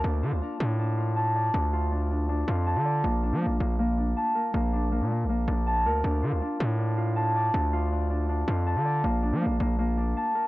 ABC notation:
X:1
M:4/4
L:1/16
Q:1/4=160
K:Dm
V:1 name="Harp"
D2 F2 D2 D2 D2 F2 a2 d2 | D2 F2 D2 D2 D2 F2 a2 d2 | B,2 D2 B,2 B,2 B,2 D2 a2 B2 | B,2 D2 B,2 B,2 B,2 D2 a2 B2 |
D2 F2 D2 D2 D2 F2 a2 d2 | D2 F2 D2 D2 D2 F2 a2 d2 | B,2 D2 B,2 B,2 B,2 D2 a2 B2 |]
V:2 name="808-style bass" clef=bass
D,,2 D, D,, z2 A,,8- A,,2 | D,,8- D,,2 F,,3 D,3 | B,,,3 F,3/2 B,,,3/2 B,,,6 z4 | B,,,4- B,,, B,,2- B,,/2 B,,,2- B,,,/2 B,,,4 D,,2 |
D,,2 D, D,, z2 A,,8- A,,2 | D,,8- D,,2 F,,3 D,3 | B,,,3 F,3/2 B,,,3/2 B,,,6 z4 |]